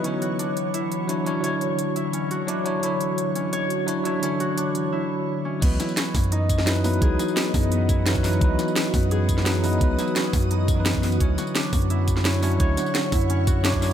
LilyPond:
<<
  \new Staff \with { instrumentName = "Ambient pad" } { \time 4/4 \key cis \phrygian \tempo 4 = 172 << { <e cis''>1~ | <e cis''>1~ | <e cis''>1~ | <e cis''>2 r2 |
dis''1~ | dis''1 | dis'''1~ | dis'''1 |
fis''1~ | fis''1 | } \\ { <d fis'>1~ | <d fis'>1~ | <d fis'>1~ | <d fis'>2 r2 |
<e b fis'>1~ | <e b fis'>1~ | <e b fis'>1~ | <e b fis'>1 |
<e' cis''>1~ | <e' cis''>1 | } >> }
  \new Staff \with { instrumentName = "Harp" } { \time 4/4 \key cis \phrygian cis'8 fis'8 d'16 r8. e'16 r4 r16 cis'8 | cis''8 r4 e'8 cis'8 fis'8 d'16 r8. | e'16 r4 r16 cis'8 cis''8 r4 e'8 | cis'8 fis'8 d'16 r8. e'16 r4 r16 cis'8 |
b8 e'8 cis'16 r8. dis'16 r4 r16 b8 | gis'8 r4 dis'8 b8 e'8 cis'16 r8. | dis'16 r4 r16 b8 gis'8 r4 dis'8 | b8 e'8 cis'16 r8. dis'16 r4 r16 b8 |
cis'8 fis'8 d'16 r8. e'16 r4 r16 cis'8 | cis''8 r4 e'8 cis'8 fis'8 d'16 r8. | }
  \new Staff \with { instrumentName = "Tine electric piano" } { \time 4/4 \key cis \phrygian <d fis e' cis''>2. <fis d' e' cis''>8 <fis d' e' cis''>8 | <d fis e' cis''>2. <fis d' e' cis''>8 <fis d' e' cis''>8 | <d fis e' cis''>2. <fis d' e' cis''>8 <fis d' e' cis''>8 | <d fis e' cis''>2 r2 |
<e fis b' dis''>2. <fis dis' e' b'>8 <fis dis' e' b'>8 | <e fis dis' b'>2. <fis dis' e' b'>8 <fis dis' e' b'>8 | <e fis dis' b'>2. <fis dis' e' b'>8 <fis dis' e' b'>8 | <e fis b' dis''>2~ <e fis b' dis''>8. <e fis dis' b'>4~ <e fis dis' b'>16 |
<d fis e' cis''>2. <fis d' e' cis''>8 <fis d' e' cis''>8 | <d fis e' cis''>2. <fis d' e' cis''>8 <fis d' e' cis''>8 | }
  \new Staff \with { instrumentName = "Sub bass" } { \clef bass \time 4/4 \key cis \phrygian r1 | r1 | r1 | r1 |
cis,8 r4 fis,2~ fis,8 | cis,8 r4 fis,2~ fis,8 | cis,8 r4 fis,2~ fis,8 | cis,8 r4 fis,2~ fis,8 |
d,8 r4 fis,2~ fis,8 | d,8 r4 fis,2~ fis,8 | }
  \new DrumStaff \with { instrumentName = "Drums" } \drummode { \time 4/4 hh8 hh8 hh8 hh8 hh8 hh8 hh8 hh8 | hh8 hh8 hh8 hh8 hh8 hh8 hh8 hh8 | hh8 hh8 hh8 hh8 hh8 hh8 hh8 hh8 | hh8 hh8 hh8 hh8 r4 r4 |
<cymc hh bd>8 <hh sn tamb>16 tamb16 <hh sn>8 <hho bd sn tamb>16 hh16 hh8 <hh bd tamb>16 sn16 <hh sn>16 hh16 <hho sn tamb>16 hh16 | <hh bd>8 <hh sn tamb>16 tamb16 <hh sn>8 <hho bd sn tamb>16 hh16 hh8 <hh bd tamb>8 <hh sn>16 <hh bd>16 <hho sn tamb>16 <hh tamb>16 | <hh bd>8 <hh sn tamb>16 tamb16 <hh sn>8 <hho bd sn tamb>16 hh16 hh8 <hh bd tamb>16 sn16 <hh sn>16 hh16 <hho sn tamb>16 hh16 | <hh bd>8 <hh sn tamb>16 tamb16 <hh sn>8 <hho bd sn tamb>16 hh16 hh8 <hh bd tamb>8 <hh sn>16 <hh bd>16 <hho sn tamb>16 <hh tamb>16 |
<hh bd>8 <hh sn tamb>16 tamb16 <hh sn>8 <hho bd sn tamb>16 hh16 hh8 <hh bd tamb>16 sn16 <hh sn>16 hh16 <hho sn tamb>16 hh16 | <hh bd>8 <hh sn tamb>16 tamb16 <hh sn>8 <hho bd sn tamb>16 hh16 hh8 <hh bd tamb>8 <hh sn>16 <hh bd>16 <hho sn tamb>8 | }
>>